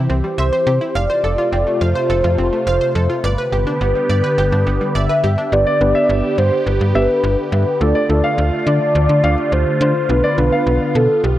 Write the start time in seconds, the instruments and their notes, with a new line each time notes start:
Already playing: analog synth pad E3 C4 G4
0.10 fm bass C2, synth arpeggio sound C4
0.24 synth arpeggio sound G3
0.38 fm bass C2, soft synth lead C5, synth arpeggio sound E5
0.53 synth arpeggio sound C5
0.67 fm bass C3, synth arpeggio sound G4
0.81 synth arpeggio sound E4
0.95 fm bass F1, analog synth pad C3 A3 F4, soft synth lead D5, synth arpeggio sound F5
1.10 synth arpeggio sound C5
1.24 fm bass F1, synth arpeggio sound A4
1.38 synth arpeggio sound F4
1.52 fm bass F1, synth arpeggio sound C4
1.67 synth arpeggio sound A3
1.81 fm bass F2, soft synth lead C5, synth arpeggio sound F5
1.95 synth arpeggio sound C5
2.10 fm bass F1, synth arpeggio sound A4
2.24 fm bass F2, synth arpeggio sound F4
2.38 fm bass F1, synth arpeggio sound C4
2.53 synth arpeggio sound A3
2.67 fm bass F1, soft synth lead C5, synth arpeggio sound F5
2.81 synth arpeggio sound C5
2.95 fm bass F2, synth arpeggio sound A4
3.10 synth arpeggio sound F4
3.24 fm bass G1, analog synth pad D3 B3 G4, soft synth lead B4, synth arpeggio sound D5
3.38 synth arpeggio sound B4
3.52 fm bass G1, synth arpeggio sound G4
3.67 synth arpeggio sound D4
3.81 fm bass G1, synth arpeggio sound B3
3.95 synth arpeggio sound G3
4.09 fm bass G2, synth arpeggio sound D5
4.24 synth arpeggio sound B4
4.38 fm bass G1, synth arpeggio sound G4
4.52 fm bass G2, synth arpeggio sound D4
4.67 fm bass G1, synth arpeggio sound B3
4.81 synth arpeggio sound G3
4.95 fm bass G1, synth arpeggio sound D5, soft synth lead E5
5.09 synth arpeggio sound B4
5.24 fm bass G2, synth arpeggio sound G4
5.38 synth arpeggio sound D4
5.52 fm bass G1, analog synth pad D3 B3 G4, synth keys B3 D4 G4 B4, soft synth lead D5
5.67 grand piano D5
5.81 fm bass G1, synth keys B3 D4 G4 B4
5.95 grand piano E5
6.09 fm bass G1
6.38 fm bass G2, soft synth lead C5
6.67 fm bass G1, soft synth lead B4
6.81 fm bass G2
6.95 fm bass G1, synth keys B3 D4 G4 B4, grand piano E5
7.24 fm bass G1
7.52 fm bass G2
7.81 fm bass D2, analog synth pad A3 F4, synth keys A3 D4 F4 A4, soft synth lead D5
7.95 grand piano D5
8.09 fm bass D2, synth keys A3 D4 F4 A4
8.24 grand piano F5
8.38 fm bass D2
8.67 fm bass D3, soft synth lead D5
8.95 fm bass D2
9.09 fm bass D3
9.24 fm bass D2, synth keys A3 D4 F4 G4, grand piano F5
9.52 fm bass D2, soft synth lead C5
9.81 fm bass D3, soft synth lead C5
10.09 fm bass B1, synth keys B3 D4 F4 B4, analog synth pad B3, soft synth lead B4
10.24 grand piano D5
10.38 fm bass B1, synth keys B3 D4 F4 B4
10.52 grand piano F5
10.67 fm bass B1
10.95 fm bass B2, soft synth lead A4
11.24 fm bass B1, soft synth lead G4